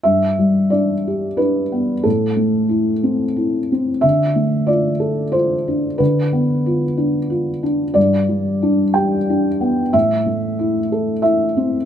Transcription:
\new Staff \with { instrumentName = "Felt piano" } { \time 3/4 \key g \mixolydian \tempo 4 = 91 << { e''4 d''4 b'4 | a'2~ a'8 r8 | e''4 d''4 c''4 | b'2~ b'8 r8 |
d''4. g''4. | e''2 e''4 | } \\ { g,8 g8 d'8 g'8 d'8 b8 | a,8 a8 e'8 c'8 e'8 c'8 | d8 a8 f'8 a'8 f'8 d'8 | d8 b8 f'8 d'8 f'8 d'8 |
g,8 g8 d'8 g'8 d'8 b8 | a,8 a8 e'8 a'8 e'8 c'8 | } >> }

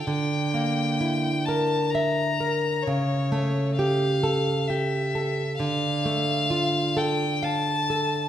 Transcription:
<<
  \new Staff \with { instrumentName = "Violin" } { \time 3/4 \key d \minor \tempo 4 = 66 g''4. a''8 bes''4 | cis''4 f''4 e''4 | f''4. g''8 a''4 | }
  \new Staff \with { instrumentName = "Nylon-string guitar" } { \time 3/4 \key d \minor d8 bes8 e'8 bes'8 e''8 bes'8 | cis8 a8 g'8 a'8 g'8 a'8 | d8 a8 f'8 a'8 f''8 a'8 | }
>>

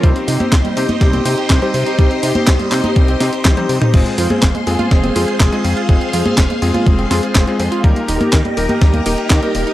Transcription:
<<
  \new Staff \with { instrumentName = "String machine" } { \time 4/4 \key c \phrygian \tempo 4 = 123 << { <c'' c'''>1~ | <c'' c'''>1~ | <c'' c'''>1~ | <c'' c'''>1 |
<bes' bes''>1 | } \\ { <g' ees''>1~ | <g' ees''>1 | <aes' f''>1~ | <aes' f''>1 |
<g' ees''>1 | } >> }
  \new Staff \with { instrumentName = "Electric grand piano" } { \time 4/4 \key c \phrygian <c' ees' g' c''>8. <c' ees' g' c''>16 r8 <c' ees' g' c''>4 <c' ees' g' c''>8. <c' ees' g' c''>8. | <c' ees' g' c''>8. <c' ees' g' c''>16 r8 <c' ees' g' c''>4 <c' ees' g' c''>8. <c' ees' g' c''>8. | <aes c' f' aes'>8. <aes c' f' aes'>16 r8 <aes c' f' aes'>4 <aes c' f' aes'>8. <aes c' f' aes'>8. | <aes c' f' aes'>8. <aes c' f' aes'>16 r8 <aes c' f' aes'>4 <aes c' f' aes'>8. <aes c' f' aes'>8. |
<bes ees' g' bes'>8. <bes ees' g' bes'>16 r8 <bes ees' g' bes'>4 <bes ees' g' bes'>8. <bes ees' g' bes'>8. | }
  \new Staff \with { instrumentName = "Synth arpeggio sound" } { \time 4/4 \key c \phrygian g16 c'16 ees'16 g'16 c''16 g16 c'16 ees'16 g16 c'16 ees'16 g'16 c''16 g16 c'16 ees'16 | g16 c'16 ees'16 g'16 c''16 g16 c'16 ees'16 g16 c'16 ees'16 g'16 c''16 g16 c'16 ees'16 | aes16 c'16 f'16 aes'16 c''16 aes16 c'16 f'16 aes16 c'16 f'16 aes'16 c''16 aes16 c'16 f'16 | aes16 c'16 f'16 aes'16 c''16 aes16 c'16 f'16 aes16 c'16 f'16 aes'16 c''16 aes16 c'16 f'16 |
g16 bes16 ees'16 g'16 bes'16 g16 bes16 ees'16 g16 bes16 ees'16 g'16 bes'16 g16 bes16 ees'16 | }
  \new Staff \with { instrumentName = "Analog synth bass" } { \clef bass \time 4/4 \key c \phrygian c,8 c8 c,8 c8 c,8 c8 c,8 c8 | c,8 c8 c,8 c8 c,8 c8 c,8 c8 | f,,8 f,8 f,,8 f,8 f,,8 f,8 f,,8 f,8 | f,,8 f,8 f,,8 f,8 f,,8 f,8 f,,8 f,8 |
ees,8 ees,,8 ees,8 ees,,8 ees,8 ees,,8 ees,8 ees,,8 | }
  \new DrumStaff \with { instrumentName = "Drums" } \drummode { \time 4/4 <hh bd>16 hh16 hho16 <cgho hh>16 <hc hh bd sn>16 <cgho hh>16 hho16 <cgho hh>16 <hh bd sn>16 <cgho hh>16 hho16 hh16 <hc hh bd sn>16 hh16 hho16 hh16 | <hh bd>16 hh16 hho16 <cgho hh>16 <hc hh bd sn>16 <cgho hh>16 <hc hho>16 <cgho hh>16 <hh bd>16 hh16 <hho sn>16 hh16 <hc hh bd sn tommh>16 <hh tommh>16 hho16 <hh toml>16 | <cymc hh bd>16 hh16 hho16 <cgho hh>16 <hc hh bd sn>16 <cgho hh>16 hho16 <cgho hh>16 <hh bd sn>16 <cgho hh>16 hho16 hh16 <hc hh bd sn>16 hh16 hho16 hh16 | <hh bd>16 hh16 hho16 <cgho hh>16 <hc hh bd sn>16 <cgho hh>16 hho16 <cgho hh>16 <hh bd>16 hh16 <hho sn>16 hh16 <hc hh bd sn>16 hh16 hho16 hh16 |
<hh bd>16 hh16 hho16 <cgho hh>16 <hc hh bd sn>16 <cgho hh>16 hho16 <cgho hh>16 <hh bd sn>16 <cgho hh>16 hho16 hh16 <hc hh bd sn>16 hh16 hho16 hh16 | }
>>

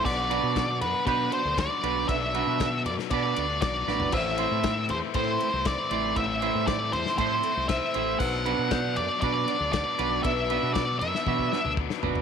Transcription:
<<
  \new Staff \with { instrumentName = "Lead electric guitar" } { \time 4/4 \key b \phrygian \tempo 4 = 118 d''4. b'8 b'8 c''8 d''4 | e''4. d''8 d''4 d''4 | e''4. c''8 c''4 d''4 | e''4 d''8 c''8 c''4 e''4 |
fis''4. d''8 d''4 d''4 | e''4 d''8 e''4. r4 | }
  \new Staff \with { instrumentName = "Synth bell" } { \time 4/4 \key b \phrygian fis''2 d''2~ | d''2.~ d''8 r8 | c''1~ | c''2. c''4 |
b'4 d''2. | b'4 b'2~ b'8 r8 | }
  \new Staff \with { instrumentName = "Clean electric guitar" } { \time 4/4 \key b \phrygian r8 <b d' fis' b'>8 r4 <b d' fis' b'>8 r4 <b d' fis' b'>8 | r8 <b d' fis' b'>8 r4 <b d' fis' b'>8 r4 <b d' fis' b'>8 | r8 <a c' e' c''>8 r4 <a c' e' c''>8 r4 <a c' e' c''>8 | r8 <a c' e' c''>8 r4 <a c' e' c''>8 r4 <a c' e' c''>8 |
r8 <b d' fis' b'>8 r4 <b d' fis' b'>8 r4 <b d' fis' b'>8 | r8 <b d' fis' b'>8 r4 <b d' fis' b'>8 r4 <b d' fis' b'>8 | }
  \new Staff \with { instrumentName = "Distorted electric guitar" } { \time 4/4 \key b \phrygian <b, fis b d' fis'>8 <b d' fis'>8 <b, fis b d' fis'>8 <b d' fis'>4 <b d' fis'>8 <fis b d' fis'>4 | <b, fis b d' fis'>8 <b d' fis'>8 <b, fis b d' fis'>8 <b d' fis'>4 <b d' fis'>8 <fis b d' fis'>4 | <a, e a c' e'>8 <a c' e'>8 <a, e a c' e'>8 <a c' e'>4 <a c' e'>8 <e a c' e'>4 | <a, e a c' e'>8 <a c' e'>8 <a, e a c' e'>8 <a c' e'>4 <a c' e'>8 <e a c' e'>4 |
<b, fis b d'>8 <fis b d'>8 <b, fis b d'>8 <fis b d'>4 <fis b d'>8 <b, fis b d'>4 | <b, fis b d'>8 <fis b d'>8 <b, fis b d'>8 <fis b d'>4 <fis b d'>8 <b, fis b d'>4 | }
  \new Staff \with { instrumentName = "Fingered electric bass" } { \clef bass \time 4/4 \key b \phrygian b,,8. b,8. fis,16 r16 b,8 r16 d,8 r16 b,,8 | b,,8. b,8. fis,16 r16 b,8 d,8 b,,8 a,,8 | a,,8. a,8. e,16 r16 a,8 r16 c,8 r16 a,,8 | a,,8. a,8. e,16 r16 a,8 r16 c,8 r16 a,,8 |
b,,8. b,8. fis,16 r16 b,8 r16 d,8 r16 b,,8 | b,,8. b,8. fis,16 r16 b,8 r16 d,8 r16 gis,,8 | }
  \new DrumStaff \with { instrumentName = "Drums" } \drummode { \time 4/4 <cymc bd>8 cymr8 <bd cymr sn>8 cymr8 <bd cymr>8 cymr8 <bd cymr sn>8 cymr8 | <bd cymr>8 cymr8 <bd cymr sn>8 cymr16 sn16 <bd cymr>8 cymr8 <bd cymr sn>8 sn16 tomfh16 | <cymc bd cymr>8 cymr8 <bd cymr sn>8 cymr8 <bd cymr>8 cymr8 <bd cymr sn>8 cymr8 | <bd cymr>8 cymr8 <bd cymr sn>8 cymr16 sn16 <bd cymr>8 cymr8 <bd cymr sn>8 cymr8 |
<cymc bd>8 cymr8 <bd cymr sn>8 cymr8 <bd cymr>8 cymr8 <bd cymr sn>8 cymr8 | <bd cymr>8 cymr8 <bd cymr sn>8 cymr16 sn16 <bd tommh>16 bd16 sn16 toml16 bd16 sn16 tomfh16 tomfh16 | }
>>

